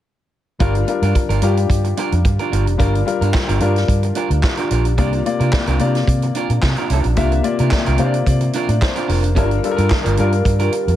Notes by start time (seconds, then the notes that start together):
0.59 G1 G3 D4 F4 A#4, kick, closed hi-hat
0.75 muted clean electric guitar stroke, closed hi-hat
0.87 G3 D4 F4 A#4, muted clean electric guitar stroke, closed hi-hat
1.02 G2 D4 F4 A#4, closed hi-hat
1.15 muted clean electric guitar stroke, kick, closed hi-hat
1.29 G1 D4 F4 A#4, closed hi-hat
1.42 G2 G3 D4 F4 G4 A#4, closed hi-hat
1.57 muted clean electric guitar stroke, closed hi-hat
1.70 G2, kick, closed hi-hat
1.84 muted clean electric guitar stroke, closed hi-hat
1.97 D4 F4 A#4, closed hi-hat
2.12 F2, muted clean electric guitar stroke, closed hi-hat
2.25 G2, muted clean electric guitar stroke, kick, closed hi-hat
2.39 D4 F4 A#4, closed hi-hat
2.52 G1 D4 F4 A#4, closed hi-hat
2.66 F1, muted clean electric guitar stroke, closed hi-hat
2.78 G1 G3 D4 F4 A#4, kick, closed hi-hat
2.94 muted clean electric guitar stroke, closed hi-hat
3.05 G3 D4 F4 A#4, muted clean electric guitar stroke, closed hi-hat
3.21 G2 D4 F4 A#4, closed hi-hat
3.34 muted clean electric guitar stroke, kick, snare, clap
3.48 G1 D4 F4 A#4, closed hi-hat
3.60 G2 G3 D4 F4 A#4, closed hi-hat
3.76 muted clean electric guitar stroke, snare, closed hi-hat
3.88 G2, kick, closed hi-hat
4.03 muted clean electric guitar stroke, closed hi-hat
4.15 D4 F4 A#4, closed hi-hat
4.30 D2, muted clean electric guitar stroke, closed hi-hat
4.43 muted clean electric guitar stroke, kick, snare, clap
4.57 D4 F4 A#4, closed hi-hat
4.71 A#1 D4 F4 A#4, closed hi-hat
4.85 muted clean electric guitar stroke, closed hi-hat
4.98 C2 C3 A#3 D4 F4 A#4 D5, kick, closed hi-hat
5.13 muted clean electric guitar stroke, closed hi-hat
5.25 C3 A#3 F4 D5, muted clean electric guitar stroke, closed hi-hat
5.40 C3 D4 F4 A#4, closed hi-hat
5.52 muted clean electric guitar stroke, kick, snare, clap
5.67 C2 D4 F4 A#4, closed hi-hat
5.79 C3 A#3 D4 F4 A#4 D5, closed hi-hat
5.95 muted clean electric guitar stroke, snare, closed hi-hat
6.07 C3, kick, closed hi-hat
6.22 muted clean electric guitar stroke, closed hi-hat
6.35 D4 F4 A#4, closed hi-hat
6.49 A#2, muted clean electric guitar stroke, closed hi-hat
6.62 C3, muted clean electric guitar stroke, kick, snare, clap
6.76 D4 F4 A#4, closed hi-hat
6.90 C2 D4 F4 A#4, closed hi-hat
7.04 A#1, muted clean electric guitar stroke, closed hi-hat
7.15 C2 C3 A#3 D4 F4 E5, kick, closed hi-hat
7.20 A#4
7.32 muted clean electric guitar stroke, closed hi-hat
7.43 C3 A#3 F4 D5, muted clean electric guitar stroke, closed hi-hat
7.59 C3 D4 F4 A#4, closed hi-hat
7.71 muted clean electric guitar stroke, kick, snare, clap
7.86 C2 D4 F4 A#4, closed hi-hat
7.98 C3 A#3 D4 F4 A#4 C5 F5, closed hi-hat
8.06 D5
8.14 muted clean electric guitar stroke, closed hi-hat
8.26 C3 D5, kick, closed hi-hat
8.41 muted clean electric guitar stroke, closed hi-hat
8.53 D4 F4 A#4, closed hi-hat
8.68 A2 D5, muted clean electric guitar stroke, closed hi-hat
8.81 C5, muted clean electric guitar stroke, kick, snare, clap
8.96 D4 F4 A#4, closed hi-hat
9.08 F1 D4 F4 A#4, open hi-hat
9.23 muted clean electric guitar stroke, closed hi-hat
9.35 G1 G3 D4 F4 A#4, kick, closed hi-hat
9.50 muted clean electric guitar stroke, closed hi-hat
9.63 G3 D4 F4 A4, muted clean electric guitar stroke, closed hi-hat
9.71 A#4
9.77 G2 D4 F4 A#4, closed hi-hat
9.90 muted clean electric guitar stroke, kick, snare, clap
10.04 G1 D4 F4 A#4, closed hi-hat
10.17 G2 G3 D4 F4 A#4, closed hi-hat
10.31 muted clean electric guitar stroke, closed hi-hat
10.45 G2, muted clean electric guitar stroke, kick, closed hi-hat
10.59 D4 F4 A#4, closed hi-hat
10.72 muted clean electric guitar stroke, closed hi-hat
10.87 F2, muted clean electric guitar stroke, closed hi-hat